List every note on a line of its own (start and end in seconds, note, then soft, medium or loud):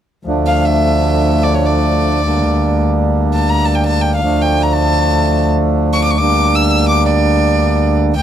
0.25 2.24 D2 medium
0.25 2.20 F3 medium
0.25 2.21 A3 medium
0.25 2.22 D4 medium
0.47 0.66 F5 medium
0.65 1.45 E5 medium
1.43 1.56 D5 medium
1.54 1.67 C#5 medium
1.66 2.82 D5 medium
2.24 4.22 D2 medium
2.24 4.19 G3 medium
2.24 4.20 A#3 medium
2.24 4.21 D4 medium
3.34 3.51 A5 medium
3.49 3.67 A#5 medium
3.65 3.76 A5 medium
3.75 3.86 G5 medium
3.87 4.03 A5 medium
4.01 4.16 G5 medium
4.16 4.43 F5 medium
4.20 6.20 D2 medium
4.20 6.15 F3 medium
4.20 6.16 A3 medium
4.20 6.17 D4 medium
4.41 4.64 G5 medium
4.62 4.74 A#5 medium
4.72 5.46 A5 medium
5.93 6.03 C#6 medium
6.04 6.12 D6 medium
6.11 6.19 C#6 medium
6.18 8.13 D2 medium
6.18 8.13 G3 medium
6.18 8.13 A#3 medium
6.18 6.57 D6 medium
6.22 8.14 D4 medium
6.55 6.88 E6 medium
6.89 7.05 D6 medium
7.06 7.96 D5 medium
8.16 8.22 D2 medium
8.16 8.22 G5 medium